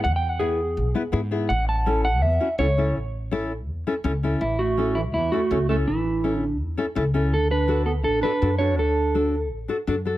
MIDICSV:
0, 0, Header, 1, 5, 480
1, 0, Start_track
1, 0, Key_signature, 3, "major"
1, 0, Tempo, 364299
1, 59, Time_signature, 4, 2, 24, 8
1, 13409, End_track
2, 0, Start_track
2, 0, Title_t, "Clean electric guitar"
2, 0, Program_c, 0, 27
2, 49, Note_on_c, 0, 78, 85
2, 206, Note_off_c, 0, 78, 0
2, 211, Note_on_c, 0, 79, 84
2, 382, Note_off_c, 0, 79, 0
2, 382, Note_on_c, 0, 78, 86
2, 520, Note_on_c, 0, 68, 88
2, 535, Note_off_c, 0, 78, 0
2, 1459, Note_off_c, 0, 68, 0
2, 1962, Note_on_c, 0, 78, 89
2, 2201, Note_off_c, 0, 78, 0
2, 2224, Note_on_c, 0, 81, 93
2, 2685, Note_off_c, 0, 81, 0
2, 2697, Note_on_c, 0, 78, 89
2, 2925, Note_off_c, 0, 78, 0
2, 2925, Note_on_c, 0, 76, 99
2, 3395, Note_off_c, 0, 76, 0
2, 3409, Note_on_c, 0, 73, 102
2, 3877, Note_off_c, 0, 73, 0
2, 5815, Note_on_c, 0, 64, 75
2, 6046, Note_on_c, 0, 66, 90
2, 6062, Note_off_c, 0, 64, 0
2, 6523, Note_on_c, 0, 64, 73
2, 6545, Note_off_c, 0, 66, 0
2, 6589, Note_off_c, 0, 64, 0
2, 6771, Note_on_c, 0, 64, 75
2, 6996, Note_off_c, 0, 64, 0
2, 7008, Note_on_c, 0, 66, 94
2, 7458, Note_off_c, 0, 66, 0
2, 7498, Note_on_c, 0, 69, 92
2, 7564, Note_off_c, 0, 69, 0
2, 7741, Note_on_c, 0, 64, 76
2, 8413, Note_off_c, 0, 64, 0
2, 8413, Note_on_c, 0, 62, 76
2, 8646, Note_off_c, 0, 62, 0
2, 9667, Note_on_c, 0, 69, 82
2, 9886, Note_off_c, 0, 69, 0
2, 9899, Note_on_c, 0, 71, 89
2, 10350, Note_off_c, 0, 71, 0
2, 10356, Note_on_c, 0, 69, 72
2, 10423, Note_off_c, 0, 69, 0
2, 10597, Note_on_c, 0, 69, 86
2, 10830, Note_off_c, 0, 69, 0
2, 10843, Note_on_c, 0, 71, 89
2, 11306, Note_off_c, 0, 71, 0
2, 11311, Note_on_c, 0, 73, 88
2, 11572, Note_off_c, 0, 73, 0
2, 11582, Note_on_c, 0, 69, 84
2, 12487, Note_off_c, 0, 69, 0
2, 13409, End_track
3, 0, Start_track
3, 0, Title_t, "Nylon-string guitar"
3, 0, Program_c, 1, 24
3, 518, Note_on_c, 1, 59, 72
3, 528, Note_on_c, 1, 64, 64
3, 529, Note_on_c, 1, 68, 80
3, 779, Note_off_c, 1, 59, 0
3, 784, Note_off_c, 1, 64, 0
3, 786, Note_off_c, 1, 68, 0
3, 1245, Note_on_c, 1, 59, 76
3, 1252, Note_on_c, 1, 64, 75
3, 1258, Note_on_c, 1, 71, 88
3, 1335, Note_off_c, 1, 59, 0
3, 1338, Note_off_c, 1, 64, 0
3, 1341, Note_off_c, 1, 71, 0
3, 1475, Note_on_c, 1, 59, 81
3, 1484, Note_on_c, 1, 64, 78
3, 1487, Note_on_c, 1, 68, 93
3, 1571, Note_off_c, 1, 59, 0
3, 1573, Note_off_c, 1, 64, 0
3, 1575, Note_off_c, 1, 68, 0
3, 1727, Note_on_c, 1, 59, 79
3, 1731, Note_on_c, 1, 68, 81
3, 1736, Note_on_c, 1, 64, 66
3, 1971, Note_off_c, 1, 59, 0
3, 1974, Note_off_c, 1, 64, 0
3, 1974, Note_off_c, 1, 68, 0
3, 2453, Note_on_c, 1, 61, 77
3, 2460, Note_on_c, 1, 64, 65
3, 2460, Note_on_c, 1, 69, 84
3, 2706, Note_off_c, 1, 61, 0
3, 2708, Note_off_c, 1, 69, 0
3, 2709, Note_off_c, 1, 64, 0
3, 3166, Note_on_c, 1, 61, 67
3, 3170, Note_on_c, 1, 64, 62
3, 3174, Note_on_c, 1, 66, 72
3, 3254, Note_off_c, 1, 64, 0
3, 3255, Note_off_c, 1, 61, 0
3, 3258, Note_off_c, 1, 66, 0
3, 3407, Note_on_c, 1, 61, 72
3, 3418, Note_on_c, 1, 64, 68
3, 3424, Note_on_c, 1, 69, 83
3, 3496, Note_off_c, 1, 61, 0
3, 3498, Note_off_c, 1, 64, 0
3, 3503, Note_off_c, 1, 69, 0
3, 3658, Note_on_c, 1, 61, 66
3, 3668, Note_on_c, 1, 64, 54
3, 3668, Note_on_c, 1, 69, 72
3, 3908, Note_off_c, 1, 61, 0
3, 3911, Note_off_c, 1, 64, 0
3, 3914, Note_off_c, 1, 69, 0
3, 4366, Note_on_c, 1, 61, 90
3, 4380, Note_on_c, 1, 69, 97
3, 4381, Note_on_c, 1, 64, 87
3, 4622, Note_off_c, 1, 61, 0
3, 4628, Note_off_c, 1, 64, 0
3, 4630, Note_off_c, 1, 69, 0
3, 5096, Note_on_c, 1, 64, 71
3, 5098, Note_on_c, 1, 61, 81
3, 5105, Note_on_c, 1, 69, 86
3, 5179, Note_off_c, 1, 64, 0
3, 5181, Note_off_c, 1, 61, 0
3, 5184, Note_off_c, 1, 69, 0
3, 5323, Note_on_c, 1, 61, 90
3, 5338, Note_on_c, 1, 69, 103
3, 5339, Note_on_c, 1, 64, 76
3, 5413, Note_off_c, 1, 61, 0
3, 5419, Note_off_c, 1, 64, 0
3, 5420, Note_off_c, 1, 69, 0
3, 5577, Note_on_c, 1, 61, 78
3, 5586, Note_on_c, 1, 64, 63
3, 5593, Note_on_c, 1, 69, 80
3, 5815, Note_off_c, 1, 61, 0
3, 5820, Note_off_c, 1, 64, 0
3, 5823, Note_off_c, 1, 69, 0
3, 6290, Note_on_c, 1, 61, 73
3, 6298, Note_on_c, 1, 64, 62
3, 6306, Note_on_c, 1, 69, 82
3, 6545, Note_off_c, 1, 61, 0
3, 6548, Note_off_c, 1, 64, 0
3, 6552, Note_off_c, 1, 69, 0
3, 7016, Note_on_c, 1, 61, 64
3, 7025, Note_on_c, 1, 64, 56
3, 7029, Note_on_c, 1, 69, 70
3, 7100, Note_off_c, 1, 61, 0
3, 7102, Note_off_c, 1, 64, 0
3, 7106, Note_off_c, 1, 69, 0
3, 7257, Note_on_c, 1, 61, 70
3, 7260, Note_on_c, 1, 64, 66
3, 7266, Note_on_c, 1, 69, 78
3, 7340, Note_off_c, 1, 64, 0
3, 7341, Note_off_c, 1, 61, 0
3, 7345, Note_off_c, 1, 69, 0
3, 7497, Note_on_c, 1, 61, 60
3, 7507, Note_on_c, 1, 64, 52
3, 7517, Note_on_c, 1, 69, 69
3, 7750, Note_off_c, 1, 61, 0
3, 7752, Note_off_c, 1, 64, 0
3, 7758, Note_off_c, 1, 69, 0
3, 8219, Note_on_c, 1, 61, 68
3, 8222, Note_on_c, 1, 64, 67
3, 8227, Note_on_c, 1, 69, 75
3, 8469, Note_off_c, 1, 64, 0
3, 8471, Note_off_c, 1, 61, 0
3, 8474, Note_off_c, 1, 69, 0
3, 8926, Note_on_c, 1, 61, 75
3, 8936, Note_on_c, 1, 69, 87
3, 8940, Note_on_c, 1, 64, 65
3, 9015, Note_off_c, 1, 61, 0
3, 9020, Note_off_c, 1, 64, 0
3, 9021, Note_off_c, 1, 69, 0
3, 9162, Note_on_c, 1, 61, 83
3, 9173, Note_on_c, 1, 69, 91
3, 9176, Note_on_c, 1, 64, 74
3, 9253, Note_off_c, 1, 61, 0
3, 9259, Note_off_c, 1, 64, 0
3, 9260, Note_off_c, 1, 69, 0
3, 9406, Note_on_c, 1, 61, 75
3, 9413, Note_on_c, 1, 64, 66
3, 9416, Note_on_c, 1, 69, 83
3, 9652, Note_off_c, 1, 61, 0
3, 9654, Note_off_c, 1, 64, 0
3, 9657, Note_off_c, 1, 69, 0
3, 10115, Note_on_c, 1, 62, 73
3, 10123, Note_on_c, 1, 66, 64
3, 10131, Note_on_c, 1, 69, 79
3, 10378, Note_off_c, 1, 62, 0
3, 10383, Note_off_c, 1, 66, 0
3, 10385, Note_off_c, 1, 69, 0
3, 10854, Note_on_c, 1, 62, 68
3, 10863, Note_on_c, 1, 66, 59
3, 10863, Note_on_c, 1, 69, 71
3, 10941, Note_off_c, 1, 62, 0
3, 10943, Note_off_c, 1, 66, 0
3, 10944, Note_off_c, 1, 69, 0
3, 11090, Note_on_c, 1, 62, 71
3, 11098, Note_on_c, 1, 66, 65
3, 11102, Note_on_c, 1, 69, 72
3, 11178, Note_off_c, 1, 62, 0
3, 11180, Note_off_c, 1, 66, 0
3, 11184, Note_off_c, 1, 69, 0
3, 11326, Note_on_c, 1, 62, 60
3, 11335, Note_on_c, 1, 66, 56
3, 11340, Note_on_c, 1, 69, 62
3, 11585, Note_off_c, 1, 62, 0
3, 11587, Note_off_c, 1, 66, 0
3, 11587, Note_off_c, 1, 69, 0
3, 12050, Note_on_c, 1, 62, 72
3, 12057, Note_on_c, 1, 66, 65
3, 12058, Note_on_c, 1, 69, 74
3, 12307, Note_off_c, 1, 62, 0
3, 12308, Note_off_c, 1, 69, 0
3, 12309, Note_off_c, 1, 66, 0
3, 12758, Note_on_c, 1, 62, 75
3, 12768, Note_on_c, 1, 66, 70
3, 12772, Note_on_c, 1, 69, 84
3, 12852, Note_off_c, 1, 62, 0
3, 12857, Note_off_c, 1, 69, 0
3, 12858, Note_off_c, 1, 66, 0
3, 13009, Note_on_c, 1, 62, 84
3, 13017, Note_on_c, 1, 66, 81
3, 13020, Note_on_c, 1, 69, 91
3, 13098, Note_off_c, 1, 62, 0
3, 13100, Note_off_c, 1, 66, 0
3, 13102, Note_off_c, 1, 69, 0
3, 13246, Note_on_c, 1, 62, 66
3, 13254, Note_on_c, 1, 66, 62
3, 13262, Note_on_c, 1, 69, 77
3, 13409, Note_off_c, 1, 62, 0
3, 13409, Note_off_c, 1, 66, 0
3, 13409, Note_off_c, 1, 69, 0
3, 13409, End_track
4, 0, Start_track
4, 0, Title_t, "Clarinet"
4, 0, Program_c, 2, 71
4, 5817, Note_on_c, 2, 52, 69
4, 6039, Note_off_c, 2, 52, 0
4, 6048, Note_on_c, 2, 57, 78
4, 6498, Note_off_c, 2, 57, 0
4, 6541, Note_on_c, 2, 52, 72
4, 6647, Note_off_c, 2, 52, 0
4, 6771, Note_on_c, 2, 52, 70
4, 6996, Note_off_c, 2, 52, 0
4, 7004, Note_on_c, 2, 57, 84
4, 7456, Note_off_c, 2, 57, 0
4, 7492, Note_on_c, 2, 57, 83
4, 7601, Note_off_c, 2, 57, 0
4, 7746, Note_on_c, 2, 52, 74
4, 8418, Note_off_c, 2, 52, 0
4, 8418, Note_on_c, 2, 50, 74
4, 8649, Note_off_c, 2, 50, 0
4, 9652, Note_on_c, 2, 62, 71
4, 9878, Note_off_c, 2, 62, 0
4, 9891, Note_on_c, 2, 62, 83
4, 10341, Note_off_c, 2, 62, 0
4, 10351, Note_on_c, 2, 59, 64
4, 10465, Note_off_c, 2, 59, 0
4, 10589, Note_on_c, 2, 62, 73
4, 10806, Note_off_c, 2, 62, 0
4, 10814, Note_on_c, 2, 62, 87
4, 11281, Note_off_c, 2, 62, 0
4, 11303, Note_on_c, 2, 62, 86
4, 11526, Note_off_c, 2, 62, 0
4, 11534, Note_on_c, 2, 62, 75
4, 12463, Note_off_c, 2, 62, 0
4, 13409, End_track
5, 0, Start_track
5, 0, Title_t, "Upright bass"
5, 0, Program_c, 3, 32
5, 58, Note_on_c, 3, 40, 107
5, 1016, Note_on_c, 3, 35, 92
5, 1036, Note_off_c, 3, 40, 0
5, 1208, Note_off_c, 3, 35, 0
5, 1490, Note_on_c, 3, 44, 101
5, 1976, Note_on_c, 3, 33, 113
5, 1996, Note_off_c, 3, 44, 0
5, 2934, Note_off_c, 3, 33, 0
5, 2934, Note_on_c, 3, 40, 94
5, 3126, Note_off_c, 3, 40, 0
5, 3405, Note_on_c, 3, 37, 100
5, 3888, Note_off_c, 3, 37, 0
5, 3888, Note_on_c, 3, 33, 109
5, 4845, Note_off_c, 3, 33, 0
5, 4845, Note_on_c, 3, 40, 94
5, 5041, Note_off_c, 3, 40, 0
5, 5325, Note_on_c, 3, 37, 103
5, 5713, Note_off_c, 3, 37, 0
5, 5809, Note_on_c, 3, 33, 101
5, 6766, Note_off_c, 3, 33, 0
5, 6766, Note_on_c, 3, 40, 85
5, 6962, Note_off_c, 3, 40, 0
5, 7255, Note_on_c, 3, 37, 98
5, 7732, Note_off_c, 3, 37, 0
5, 7732, Note_on_c, 3, 33, 108
5, 8694, Note_off_c, 3, 33, 0
5, 8694, Note_on_c, 3, 40, 93
5, 8887, Note_off_c, 3, 40, 0
5, 9173, Note_on_c, 3, 37, 99
5, 9644, Note_off_c, 3, 37, 0
5, 9644, Note_on_c, 3, 38, 97
5, 10608, Note_off_c, 3, 38, 0
5, 10608, Note_on_c, 3, 33, 92
5, 10804, Note_off_c, 3, 33, 0
5, 11093, Note_on_c, 3, 42, 93
5, 11569, Note_off_c, 3, 42, 0
5, 11569, Note_on_c, 3, 38, 97
5, 12527, Note_off_c, 3, 38, 0
5, 12527, Note_on_c, 3, 33, 97
5, 12723, Note_off_c, 3, 33, 0
5, 13010, Note_on_c, 3, 42, 91
5, 13409, Note_off_c, 3, 42, 0
5, 13409, End_track
0, 0, End_of_file